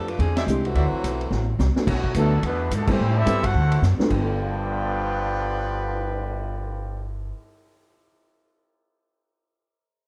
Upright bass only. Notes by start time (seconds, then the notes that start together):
Already playing: F2
0.19 E2
0.46 C2
0.75 D2
0.93 muted upright bass stroke
1.04 B1
1.31 A1
1.59 C2
1.76 muted upright bass stroke
1.87 B1
2.15 D2
2.43 E2
2.71 G#2
2.99 A2
3.26 G2
3.54 D2
3.82 F#2
3.99 muted upright bass stroke
4.10 G1